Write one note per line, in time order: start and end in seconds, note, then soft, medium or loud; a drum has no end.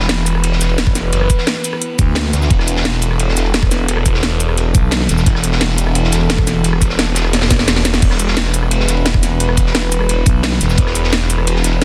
0.00 0.59 E1 loud
0.00 11.84 E3 medium
0.00 11.84 B3 medium
0.00 2.48 B4 medium
0.09 snare loud
0.09 closed hi-hat medium
0.09 ride medium
0.18 snare soft
0.26 closed hi-hat medium
0.26 ride medium
0.26 shaker medium
0.35 cross-stick soft
0.44 closed hi-hat medium
0.44 ride medium
0.52 snare soft
0.61 1.11 E1 loud
0.61 snare soft
0.61 closed hi-hat medium
0.61 ride medium
0.61 shaker medium
0.69 ride soft
0.78 snare loud
0.78 closed hi-hat medium
0.78 ride medium
0.78 shaker soft
0.87 kick loud
0.87 cross-stick soft
0.95 snare soft
0.95 closed hi-hat medium
0.95 ride medium
0.95 shaker medium
1.13 1.28 F#1 loud
1.13 closed hi-hat medium
1.13 ride medium
1.21 cross-stick soft
1.30 kick medium
1.30 closed hi-hat medium
1.30 ride medium
1.30 shaker medium
1.38 snare soft
1.47 snare loud
1.47 closed hi-hat medium
1.47 ride medium
1.64 closed hi-hat medium
1.64 ride medium
1.64 shaker medium
1.73 cross-stick soft
1.82 closed hi-hat medium
1.99 2.32 D2 medium
1.99 kick loud
1.99 closed hi-hat medium
1.99 ride medium
1.99 shaker medium
2.15 snare loud
2.15 closed hi-hat medium
2.15 ride loud
2.15 shaker soft
2.25 snare soft
2.33 2.49 D2 loud
2.33 snare soft
2.33 closed hi-hat medium
2.33 ride medium
2.33 shaker medium
2.42 snare soft
2.42 shaker soft
2.50 3.35 E1 loud
2.50 8.00 A4 medium
2.50 kick loud
2.50 closed hi-hat medium
2.50 ride medium
2.59 cross-stick soft
2.59 snare medium
2.67 closed hi-hat medium
2.67 ride medium
2.67 shaker medium
2.76 snare medium
2.85 snare loud
2.85 closed hi-hat medium
2.85 ride medium
2.94 snare soft
3.02 closed hi-hat medium
3.02 ride medium
3.02 shaker medium
3.11 cross-stick soft
3.20 closed hi-hat medium
3.20 ride medium
3.29 snare soft
3.37 3.87 E1 loud
3.37 snare soft
3.37 closed hi-hat medium
3.37 ride medium
3.37 shaker medium
3.46 ride soft
3.54 snare loud
3.54 closed hi-hat medium
3.54 ride medium
3.54 shaker soft
3.63 kick loud
3.63 cross-stick soft
3.71 snare soft
3.71 closed hi-hat medium
3.71 ride medium
3.71 shaker medium
3.88 4.73 E1 loud
3.88 closed hi-hat medium
3.88 ride medium
3.97 cross-stick soft
4.06 kick medium
4.06 closed hi-hat medium
4.06 ride medium
4.06 shaker medium
4.14 snare soft
4.23 snare loud
4.23 closed hi-hat medium
4.23 ride loud
4.40 closed hi-hat medium
4.40 ride medium
4.40 shaker medium
4.49 cross-stick soft
4.57 closed hi-hat medium
4.57 ride medium
4.75 5.08 B1 medium
4.75 kick loud
4.75 closed hi-hat medium
4.75 ride medium
4.75 shaker medium
4.91 snare loud
4.91 closed hi-hat medium
4.91 ride medium
4.91 shaker soft
5.01 snare soft
5.09 5.25 E1 loud
5.09 snare soft
5.09 closed hi-hat medium
5.09 ride medium
5.09 shaker medium
5.18 snare soft
5.18 shaker soft
5.26 6.11 E1 loud
5.26 kick loud
5.26 closed hi-hat medium
5.26 ride medium
5.35 cross-stick soft
5.35 snare soft
5.44 closed hi-hat loud
5.44 ride medium
5.44 shaker medium
5.52 snare medium
5.61 snare loud
5.61 closed hi-hat medium
5.61 ride medium
5.69 snare medium
5.78 closed hi-hat loud
5.78 ride medium
5.78 shaker medium
5.87 cross-stick soft
5.95 closed hi-hat medium
5.95 ride medium
6.04 snare soft
6.12 6.63 E1 loud
6.12 snare soft
6.12 closed hi-hat loud
6.12 ride medium
6.12 shaker medium
6.21 ride soft
6.29 snare loud
6.29 closed hi-hat medium
6.29 ride medium
6.29 shaker soft
6.38 kick loud
6.38 cross-stick soft
6.47 snare soft
6.47 closed hi-hat loud
6.47 ride medium
6.47 shaker medium
6.64 7.49 E1 loud
6.64 closed hi-hat medium
6.64 ride medium
6.73 cross-stick soft
6.82 kick medium
6.82 closed hi-hat loud
6.82 ride medium
6.82 shaker medium
6.89 snare soft
6.99 snare loud
6.99 closed hi-hat medium
6.99 ride medium
7.15 snare loud
7.15 closed hi-hat loud
7.15 ride medium
7.15 shaker medium
7.25 cross-stick soft
7.33 snare medium
7.33 snare soft
7.33 closed hi-hat medium
7.33 ride medium
7.41 snare loud
7.41 snare medium
7.41 ride medium
7.50 8.01 E1 loud
7.50 kick loud
7.50 snare medium
7.50 closed hi-hat loud
7.50 shaker medium
7.59 snare soft
7.59 snare medium
7.59 ride medium
7.68 snare loud
7.68 snare medium
7.68 closed hi-hat medium
7.68 ride medium
7.68 shaker soft
7.76 snare medium
7.85 snare loud
7.85 snare soft
7.85 closed hi-hat loud
7.85 ride medium
7.85 shaker medium
7.94 snare medium
7.94 snare soft
7.94 shaker soft
8.02 8.87 E1 loud
8.02 11.84 B4 medium
8.02 kick loud
8.02 closed hi-hat medium
8.02 crash medium
8.02 ride medium
8.11 cross-stick medium
8.11 snare medium
8.20 closed hi-hat loud
8.20 ride medium
8.20 shaker medium
8.28 snare medium
8.37 snare loud
8.37 closed hi-hat medium
8.37 ride medium
8.46 snare medium
8.53 closed hi-hat loud
8.53 ride medium
8.53 shaker medium
8.63 cross-stick soft
8.71 closed hi-hat medium
8.71 ride loud
8.80 snare soft
8.88 9.39 E1 loud
8.88 snare soft
8.88 closed hi-hat loud
8.88 ride medium
8.88 shaker medium
8.97 ride soft
9.05 snare loud
9.05 closed hi-hat medium
9.05 ride loud
9.05 shaker soft
9.14 kick loud
9.14 cross-stick soft
9.23 snare soft
9.23 closed hi-hat loud
9.23 ride medium
9.23 shaker medium
9.40 10.25 E1 loud
9.40 closed hi-hat medium
9.40 ride loud
9.49 cross-stick medium
9.57 kick medium
9.57 closed hi-hat medium
9.57 ride medium
9.57 shaker medium
9.66 snare soft
9.75 snare loud
9.75 closed hi-hat medium
9.75 ride medium
9.92 closed hi-hat loud
9.92 ride medium
9.92 shaker medium
10.01 cross-stick soft
10.09 closed hi-hat medium
10.09 ride medium
10.26 10.59 B1 loud
10.26 kick loud
10.26 closed hi-hat loud
10.26 ride medium
10.26 shaker medium
10.43 snare loud
10.43 closed hi-hat medium
10.43 ride medium
10.43 shaker soft
10.52 snare soft
10.61 10.77 E1 loud
10.61 snare soft
10.61 closed hi-hat medium
10.61 ride medium
10.61 shaker medium
10.69 snare soft
10.69 shaker soft
10.77 11.63 E1 loud
10.77 kick loud
10.77 closed hi-hat medium
10.77 ride medium
10.87 cross-stick soft
10.87 snare soft
10.95 closed hi-hat medium
10.95 ride medium
10.95 shaker medium
11.04 snare medium
11.12 snare loud
11.12 closed hi-hat medium
11.12 ride medium
11.21 snare soft
11.30 closed hi-hat medium
11.30 ride medium
11.30 shaker medium
11.38 cross-stick soft
11.47 closed hi-hat medium
11.47 ride medium
11.56 snare soft
11.64 11.84 E1 loud
11.64 snare soft
11.64 closed hi-hat medium
11.64 ride medium
11.64 shaker medium
11.73 ride soft